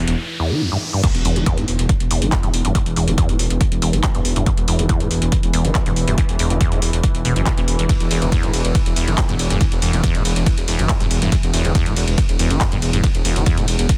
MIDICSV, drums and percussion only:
0, 0, Header, 1, 2, 480
1, 0, Start_track
1, 0, Key_signature, 1, "minor"
1, 0, Tempo, 428571
1, 1160, Time_signature, 4, 2, 24, 8
1, 15654, End_track
2, 0, Start_track
2, 0, Title_t, "Drums"
2, 84, Note_on_c, 9, 42, 55
2, 196, Note_off_c, 9, 42, 0
2, 1160, Note_on_c, 9, 36, 118
2, 1160, Note_on_c, 9, 42, 96
2, 1160, Note_on_c, 9, 49, 106
2, 1272, Note_off_c, 9, 36, 0
2, 1272, Note_off_c, 9, 42, 0
2, 1272, Note_off_c, 9, 49, 0
2, 1285, Note_on_c, 9, 42, 55
2, 1397, Note_off_c, 9, 42, 0
2, 1400, Note_on_c, 9, 46, 110
2, 1512, Note_off_c, 9, 46, 0
2, 1525, Note_on_c, 9, 42, 55
2, 1637, Note_off_c, 9, 42, 0
2, 1640, Note_on_c, 9, 36, 121
2, 1640, Note_on_c, 9, 42, 99
2, 1752, Note_off_c, 9, 36, 0
2, 1752, Note_off_c, 9, 42, 0
2, 1765, Note_on_c, 9, 42, 55
2, 1877, Note_off_c, 9, 42, 0
2, 1880, Note_on_c, 9, 46, 109
2, 1992, Note_off_c, 9, 46, 0
2, 2005, Note_on_c, 9, 42, 57
2, 2117, Note_off_c, 9, 42, 0
2, 2120, Note_on_c, 9, 36, 119
2, 2120, Note_on_c, 9, 42, 97
2, 2232, Note_off_c, 9, 36, 0
2, 2232, Note_off_c, 9, 42, 0
2, 2244, Note_on_c, 9, 42, 57
2, 2356, Note_off_c, 9, 42, 0
2, 2360, Note_on_c, 9, 46, 111
2, 2472, Note_off_c, 9, 46, 0
2, 2485, Note_on_c, 9, 42, 58
2, 2597, Note_off_c, 9, 42, 0
2, 2600, Note_on_c, 9, 36, 120
2, 2600, Note_on_c, 9, 39, 127
2, 2600, Note_on_c, 9, 42, 95
2, 2712, Note_off_c, 9, 36, 0
2, 2712, Note_off_c, 9, 39, 0
2, 2712, Note_off_c, 9, 42, 0
2, 2725, Note_on_c, 9, 42, 57
2, 2837, Note_off_c, 9, 42, 0
2, 2840, Note_on_c, 9, 46, 108
2, 2952, Note_off_c, 9, 46, 0
2, 2965, Note_on_c, 9, 42, 56
2, 3077, Note_off_c, 9, 42, 0
2, 3080, Note_on_c, 9, 36, 123
2, 3080, Note_on_c, 9, 42, 95
2, 3192, Note_off_c, 9, 36, 0
2, 3192, Note_off_c, 9, 42, 0
2, 3206, Note_on_c, 9, 42, 55
2, 3318, Note_off_c, 9, 42, 0
2, 3320, Note_on_c, 9, 46, 111
2, 3432, Note_off_c, 9, 46, 0
2, 3445, Note_on_c, 9, 42, 54
2, 3557, Note_off_c, 9, 42, 0
2, 3560, Note_on_c, 9, 36, 124
2, 3560, Note_on_c, 9, 42, 101
2, 3672, Note_off_c, 9, 36, 0
2, 3672, Note_off_c, 9, 42, 0
2, 3685, Note_on_c, 9, 42, 55
2, 3797, Note_off_c, 9, 42, 0
2, 3800, Note_on_c, 9, 46, 113
2, 3912, Note_off_c, 9, 46, 0
2, 3925, Note_on_c, 9, 42, 59
2, 4037, Note_off_c, 9, 42, 0
2, 4039, Note_on_c, 9, 42, 98
2, 4040, Note_on_c, 9, 36, 120
2, 4151, Note_off_c, 9, 42, 0
2, 4152, Note_off_c, 9, 36, 0
2, 4164, Note_on_c, 9, 42, 55
2, 4276, Note_off_c, 9, 42, 0
2, 4279, Note_on_c, 9, 46, 110
2, 4391, Note_off_c, 9, 46, 0
2, 4404, Note_on_c, 9, 42, 58
2, 4516, Note_off_c, 9, 42, 0
2, 4519, Note_on_c, 9, 39, 122
2, 4519, Note_on_c, 9, 42, 97
2, 4520, Note_on_c, 9, 36, 125
2, 4631, Note_off_c, 9, 39, 0
2, 4631, Note_off_c, 9, 42, 0
2, 4632, Note_off_c, 9, 36, 0
2, 4644, Note_on_c, 9, 42, 56
2, 4756, Note_off_c, 9, 42, 0
2, 4759, Note_on_c, 9, 46, 110
2, 4871, Note_off_c, 9, 46, 0
2, 4885, Note_on_c, 9, 42, 57
2, 4997, Note_off_c, 9, 42, 0
2, 4999, Note_on_c, 9, 36, 124
2, 4999, Note_on_c, 9, 42, 97
2, 5111, Note_off_c, 9, 36, 0
2, 5111, Note_off_c, 9, 42, 0
2, 5124, Note_on_c, 9, 42, 55
2, 5236, Note_off_c, 9, 42, 0
2, 5239, Note_on_c, 9, 46, 115
2, 5351, Note_off_c, 9, 46, 0
2, 5365, Note_on_c, 9, 42, 54
2, 5477, Note_off_c, 9, 42, 0
2, 5479, Note_on_c, 9, 42, 97
2, 5480, Note_on_c, 9, 36, 127
2, 5591, Note_off_c, 9, 42, 0
2, 5592, Note_off_c, 9, 36, 0
2, 5604, Note_on_c, 9, 42, 53
2, 5716, Note_off_c, 9, 42, 0
2, 5720, Note_on_c, 9, 46, 115
2, 5832, Note_off_c, 9, 46, 0
2, 5844, Note_on_c, 9, 42, 58
2, 5956, Note_off_c, 9, 42, 0
2, 5959, Note_on_c, 9, 42, 94
2, 5960, Note_on_c, 9, 36, 124
2, 6071, Note_off_c, 9, 42, 0
2, 6072, Note_off_c, 9, 36, 0
2, 6084, Note_on_c, 9, 42, 56
2, 6196, Note_off_c, 9, 42, 0
2, 6199, Note_on_c, 9, 46, 112
2, 6311, Note_off_c, 9, 46, 0
2, 6324, Note_on_c, 9, 42, 55
2, 6436, Note_off_c, 9, 42, 0
2, 6439, Note_on_c, 9, 39, 116
2, 6439, Note_on_c, 9, 42, 97
2, 6440, Note_on_c, 9, 36, 124
2, 6551, Note_off_c, 9, 39, 0
2, 6551, Note_off_c, 9, 42, 0
2, 6552, Note_off_c, 9, 36, 0
2, 6564, Note_on_c, 9, 42, 57
2, 6676, Note_off_c, 9, 42, 0
2, 6679, Note_on_c, 9, 46, 115
2, 6791, Note_off_c, 9, 46, 0
2, 6805, Note_on_c, 9, 42, 55
2, 6917, Note_off_c, 9, 42, 0
2, 6919, Note_on_c, 9, 42, 89
2, 6920, Note_on_c, 9, 36, 127
2, 7031, Note_off_c, 9, 42, 0
2, 7032, Note_off_c, 9, 36, 0
2, 7044, Note_on_c, 9, 42, 53
2, 7156, Note_off_c, 9, 42, 0
2, 7159, Note_on_c, 9, 46, 111
2, 7271, Note_off_c, 9, 46, 0
2, 7284, Note_on_c, 9, 42, 52
2, 7396, Note_off_c, 9, 42, 0
2, 7399, Note_on_c, 9, 42, 94
2, 7400, Note_on_c, 9, 36, 121
2, 7511, Note_off_c, 9, 42, 0
2, 7512, Note_off_c, 9, 36, 0
2, 7524, Note_on_c, 9, 42, 50
2, 7636, Note_off_c, 9, 42, 0
2, 7639, Note_on_c, 9, 46, 114
2, 7751, Note_off_c, 9, 46, 0
2, 7765, Note_on_c, 9, 42, 55
2, 7877, Note_off_c, 9, 42, 0
2, 7879, Note_on_c, 9, 42, 93
2, 7880, Note_on_c, 9, 36, 125
2, 7991, Note_off_c, 9, 42, 0
2, 7992, Note_off_c, 9, 36, 0
2, 8005, Note_on_c, 9, 42, 53
2, 8117, Note_off_c, 9, 42, 0
2, 8119, Note_on_c, 9, 46, 115
2, 8231, Note_off_c, 9, 46, 0
2, 8244, Note_on_c, 9, 42, 53
2, 8356, Note_off_c, 9, 42, 0
2, 8359, Note_on_c, 9, 36, 127
2, 8359, Note_on_c, 9, 39, 116
2, 8359, Note_on_c, 9, 42, 95
2, 8471, Note_off_c, 9, 36, 0
2, 8471, Note_off_c, 9, 39, 0
2, 8471, Note_off_c, 9, 42, 0
2, 8485, Note_on_c, 9, 42, 55
2, 8597, Note_off_c, 9, 42, 0
2, 8600, Note_on_c, 9, 46, 112
2, 8712, Note_off_c, 9, 46, 0
2, 8725, Note_on_c, 9, 42, 53
2, 8837, Note_off_c, 9, 42, 0
2, 8839, Note_on_c, 9, 36, 118
2, 8840, Note_on_c, 9, 42, 89
2, 8840, Note_on_c, 9, 51, 82
2, 8951, Note_off_c, 9, 36, 0
2, 8952, Note_off_c, 9, 42, 0
2, 8952, Note_off_c, 9, 51, 0
2, 8965, Note_on_c, 9, 42, 51
2, 8965, Note_on_c, 9, 51, 56
2, 9077, Note_off_c, 9, 42, 0
2, 9077, Note_off_c, 9, 51, 0
2, 9080, Note_on_c, 9, 46, 107
2, 9080, Note_on_c, 9, 51, 80
2, 9192, Note_off_c, 9, 46, 0
2, 9192, Note_off_c, 9, 51, 0
2, 9205, Note_on_c, 9, 42, 50
2, 9205, Note_on_c, 9, 51, 55
2, 9317, Note_off_c, 9, 42, 0
2, 9317, Note_off_c, 9, 51, 0
2, 9319, Note_on_c, 9, 36, 120
2, 9320, Note_on_c, 9, 42, 90
2, 9320, Note_on_c, 9, 51, 83
2, 9431, Note_off_c, 9, 36, 0
2, 9432, Note_off_c, 9, 42, 0
2, 9432, Note_off_c, 9, 51, 0
2, 9444, Note_on_c, 9, 42, 51
2, 9444, Note_on_c, 9, 51, 56
2, 9556, Note_off_c, 9, 42, 0
2, 9556, Note_off_c, 9, 51, 0
2, 9559, Note_on_c, 9, 46, 111
2, 9559, Note_on_c, 9, 51, 83
2, 9671, Note_off_c, 9, 46, 0
2, 9671, Note_off_c, 9, 51, 0
2, 9685, Note_on_c, 9, 42, 52
2, 9685, Note_on_c, 9, 51, 59
2, 9797, Note_off_c, 9, 42, 0
2, 9797, Note_off_c, 9, 51, 0
2, 9799, Note_on_c, 9, 36, 118
2, 9799, Note_on_c, 9, 42, 92
2, 9799, Note_on_c, 9, 51, 82
2, 9911, Note_off_c, 9, 36, 0
2, 9911, Note_off_c, 9, 42, 0
2, 9911, Note_off_c, 9, 51, 0
2, 9925, Note_on_c, 9, 42, 53
2, 9925, Note_on_c, 9, 51, 58
2, 10037, Note_off_c, 9, 42, 0
2, 10037, Note_off_c, 9, 51, 0
2, 10039, Note_on_c, 9, 46, 111
2, 10039, Note_on_c, 9, 51, 80
2, 10151, Note_off_c, 9, 46, 0
2, 10151, Note_off_c, 9, 51, 0
2, 10165, Note_on_c, 9, 42, 52
2, 10165, Note_on_c, 9, 51, 59
2, 10277, Note_off_c, 9, 42, 0
2, 10277, Note_off_c, 9, 51, 0
2, 10279, Note_on_c, 9, 36, 124
2, 10279, Note_on_c, 9, 39, 118
2, 10279, Note_on_c, 9, 42, 89
2, 10279, Note_on_c, 9, 51, 79
2, 10391, Note_off_c, 9, 36, 0
2, 10391, Note_off_c, 9, 39, 0
2, 10391, Note_off_c, 9, 42, 0
2, 10391, Note_off_c, 9, 51, 0
2, 10405, Note_on_c, 9, 42, 53
2, 10405, Note_on_c, 9, 51, 60
2, 10517, Note_off_c, 9, 42, 0
2, 10517, Note_off_c, 9, 51, 0
2, 10520, Note_on_c, 9, 46, 108
2, 10520, Note_on_c, 9, 51, 79
2, 10632, Note_off_c, 9, 46, 0
2, 10632, Note_off_c, 9, 51, 0
2, 10645, Note_on_c, 9, 42, 53
2, 10645, Note_on_c, 9, 51, 60
2, 10757, Note_off_c, 9, 42, 0
2, 10757, Note_off_c, 9, 51, 0
2, 10760, Note_on_c, 9, 36, 117
2, 10760, Note_on_c, 9, 42, 88
2, 10760, Note_on_c, 9, 51, 81
2, 10872, Note_off_c, 9, 36, 0
2, 10872, Note_off_c, 9, 42, 0
2, 10872, Note_off_c, 9, 51, 0
2, 10885, Note_on_c, 9, 42, 50
2, 10885, Note_on_c, 9, 51, 59
2, 10997, Note_off_c, 9, 42, 0
2, 10997, Note_off_c, 9, 51, 0
2, 11000, Note_on_c, 9, 46, 106
2, 11000, Note_on_c, 9, 51, 83
2, 11112, Note_off_c, 9, 46, 0
2, 11112, Note_off_c, 9, 51, 0
2, 11125, Note_on_c, 9, 42, 50
2, 11125, Note_on_c, 9, 51, 60
2, 11237, Note_off_c, 9, 42, 0
2, 11237, Note_off_c, 9, 51, 0
2, 11240, Note_on_c, 9, 36, 116
2, 11240, Note_on_c, 9, 42, 88
2, 11240, Note_on_c, 9, 51, 85
2, 11352, Note_off_c, 9, 36, 0
2, 11352, Note_off_c, 9, 42, 0
2, 11352, Note_off_c, 9, 51, 0
2, 11366, Note_on_c, 9, 42, 51
2, 11366, Note_on_c, 9, 51, 59
2, 11478, Note_off_c, 9, 42, 0
2, 11478, Note_off_c, 9, 51, 0
2, 11480, Note_on_c, 9, 46, 107
2, 11480, Note_on_c, 9, 51, 86
2, 11592, Note_off_c, 9, 46, 0
2, 11592, Note_off_c, 9, 51, 0
2, 11605, Note_on_c, 9, 42, 54
2, 11605, Note_on_c, 9, 51, 59
2, 11717, Note_off_c, 9, 42, 0
2, 11717, Note_off_c, 9, 51, 0
2, 11720, Note_on_c, 9, 36, 113
2, 11720, Note_on_c, 9, 42, 90
2, 11720, Note_on_c, 9, 51, 84
2, 11832, Note_off_c, 9, 36, 0
2, 11832, Note_off_c, 9, 42, 0
2, 11832, Note_off_c, 9, 51, 0
2, 11845, Note_on_c, 9, 42, 51
2, 11845, Note_on_c, 9, 51, 62
2, 11957, Note_off_c, 9, 42, 0
2, 11957, Note_off_c, 9, 51, 0
2, 11960, Note_on_c, 9, 46, 108
2, 11960, Note_on_c, 9, 51, 84
2, 12072, Note_off_c, 9, 46, 0
2, 12072, Note_off_c, 9, 51, 0
2, 12085, Note_on_c, 9, 42, 51
2, 12085, Note_on_c, 9, 51, 61
2, 12197, Note_off_c, 9, 42, 0
2, 12197, Note_off_c, 9, 51, 0
2, 12200, Note_on_c, 9, 36, 114
2, 12200, Note_on_c, 9, 39, 123
2, 12200, Note_on_c, 9, 42, 89
2, 12200, Note_on_c, 9, 51, 86
2, 12312, Note_off_c, 9, 36, 0
2, 12312, Note_off_c, 9, 39, 0
2, 12312, Note_off_c, 9, 42, 0
2, 12312, Note_off_c, 9, 51, 0
2, 12325, Note_on_c, 9, 42, 52
2, 12325, Note_on_c, 9, 51, 60
2, 12437, Note_off_c, 9, 42, 0
2, 12437, Note_off_c, 9, 51, 0
2, 12440, Note_on_c, 9, 46, 106
2, 12440, Note_on_c, 9, 51, 82
2, 12552, Note_off_c, 9, 46, 0
2, 12552, Note_off_c, 9, 51, 0
2, 12565, Note_on_c, 9, 42, 53
2, 12565, Note_on_c, 9, 51, 62
2, 12677, Note_off_c, 9, 42, 0
2, 12677, Note_off_c, 9, 51, 0
2, 12680, Note_on_c, 9, 36, 114
2, 12680, Note_on_c, 9, 42, 88
2, 12680, Note_on_c, 9, 51, 82
2, 12792, Note_off_c, 9, 36, 0
2, 12792, Note_off_c, 9, 42, 0
2, 12792, Note_off_c, 9, 51, 0
2, 12805, Note_on_c, 9, 42, 52
2, 12805, Note_on_c, 9, 51, 61
2, 12917, Note_off_c, 9, 42, 0
2, 12917, Note_off_c, 9, 51, 0
2, 12920, Note_on_c, 9, 46, 105
2, 12920, Note_on_c, 9, 51, 85
2, 13032, Note_off_c, 9, 46, 0
2, 13032, Note_off_c, 9, 51, 0
2, 13045, Note_on_c, 9, 42, 53
2, 13045, Note_on_c, 9, 51, 59
2, 13157, Note_off_c, 9, 42, 0
2, 13157, Note_off_c, 9, 51, 0
2, 13160, Note_on_c, 9, 36, 118
2, 13160, Note_on_c, 9, 42, 93
2, 13160, Note_on_c, 9, 51, 86
2, 13272, Note_off_c, 9, 36, 0
2, 13272, Note_off_c, 9, 42, 0
2, 13272, Note_off_c, 9, 51, 0
2, 13285, Note_on_c, 9, 42, 53
2, 13285, Note_on_c, 9, 51, 61
2, 13397, Note_off_c, 9, 42, 0
2, 13397, Note_off_c, 9, 51, 0
2, 13400, Note_on_c, 9, 46, 107
2, 13400, Note_on_c, 9, 51, 90
2, 13512, Note_off_c, 9, 46, 0
2, 13512, Note_off_c, 9, 51, 0
2, 13525, Note_on_c, 9, 42, 54
2, 13525, Note_on_c, 9, 51, 64
2, 13637, Note_off_c, 9, 42, 0
2, 13637, Note_off_c, 9, 51, 0
2, 13640, Note_on_c, 9, 36, 115
2, 13641, Note_on_c, 9, 42, 94
2, 13641, Note_on_c, 9, 51, 86
2, 13752, Note_off_c, 9, 36, 0
2, 13753, Note_off_c, 9, 42, 0
2, 13753, Note_off_c, 9, 51, 0
2, 13765, Note_on_c, 9, 42, 54
2, 13765, Note_on_c, 9, 51, 62
2, 13877, Note_off_c, 9, 42, 0
2, 13877, Note_off_c, 9, 51, 0
2, 13880, Note_on_c, 9, 46, 101
2, 13880, Note_on_c, 9, 51, 83
2, 13992, Note_off_c, 9, 46, 0
2, 13992, Note_off_c, 9, 51, 0
2, 14006, Note_on_c, 9, 42, 55
2, 14006, Note_on_c, 9, 51, 61
2, 14118, Note_off_c, 9, 42, 0
2, 14118, Note_off_c, 9, 51, 0
2, 14120, Note_on_c, 9, 36, 115
2, 14120, Note_on_c, 9, 39, 126
2, 14120, Note_on_c, 9, 42, 94
2, 14120, Note_on_c, 9, 51, 84
2, 14232, Note_off_c, 9, 36, 0
2, 14232, Note_off_c, 9, 39, 0
2, 14232, Note_off_c, 9, 42, 0
2, 14232, Note_off_c, 9, 51, 0
2, 14246, Note_on_c, 9, 42, 54
2, 14246, Note_on_c, 9, 51, 61
2, 14358, Note_off_c, 9, 42, 0
2, 14358, Note_off_c, 9, 51, 0
2, 14360, Note_on_c, 9, 46, 105
2, 14360, Note_on_c, 9, 51, 87
2, 14472, Note_off_c, 9, 46, 0
2, 14472, Note_off_c, 9, 51, 0
2, 14485, Note_on_c, 9, 42, 54
2, 14485, Note_on_c, 9, 51, 62
2, 14597, Note_off_c, 9, 42, 0
2, 14597, Note_off_c, 9, 51, 0
2, 14600, Note_on_c, 9, 36, 119
2, 14600, Note_on_c, 9, 42, 95
2, 14600, Note_on_c, 9, 51, 82
2, 14712, Note_off_c, 9, 36, 0
2, 14712, Note_off_c, 9, 42, 0
2, 14712, Note_off_c, 9, 51, 0
2, 14725, Note_on_c, 9, 42, 55
2, 14725, Note_on_c, 9, 51, 61
2, 14837, Note_off_c, 9, 42, 0
2, 14837, Note_off_c, 9, 51, 0
2, 14839, Note_on_c, 9, 46, 106
2, 14839, Note_on_c, 9, 51, 82
2, 14951, Note_off_c, 9, 46, 0
2, 14951, Note_off_c, 9, 51, 0
2, 14965, Note_on_c, 9, 42, 54
2, 14965, Note_on_c, 9, 51, 60
2, 15077, Note_off_c, 9, 42, 0
2, 15077, Note_off_c, 9, 51, 0
2, 15079, Note_on_c, 9, 42, 98
2, 15079, Note_on_c, 9, 51, 83
2, 15080, Note_on_c, 9, 36, 114
2, 15191, Note_off_c, 9, 42, 0
2, 15191, Note_off_c, 9, 51, 0
2, 15192, Note_off_c, 9, 36, 0
2, 15204, Note_on_c, 9, 42, 55
2, 15204, Note_on_c, 9, 51, 59
2, 15316, Note_off_c, 9, 42, 0
2, 15316, Note_off_c, 9, 51, 0
2, 15319, Note_on_c, 9, 46, 109
2, 15319, Note_on_c, 9, 51, 87
2, 15431, Note_off_c, 9, 46, 0
2, 15431, Note_off_c, 9, 51, 0
2, 15444, Note_on_c, 9, 42, 56
2, 15444, Note_on_c, 9, 51, 61
2, 15556, Note_off_c, 9, 42, 0
2, 15556, Note_off_c, 9, 51, 0
2, 15559, Note_on_c, 9, 42, 97
2, 15559, Note_on_c, 9, 51, 84
2, 15560, Note_on_c, 9, 36, 118
2, 15654, Note_off_c, 9, 36, 0
2, 15654, Note_off_c, 9, 42, 0
2, 15654, Note_off_c, 9, 51, 0
2, 15654, End_track
0, 0, End_of_file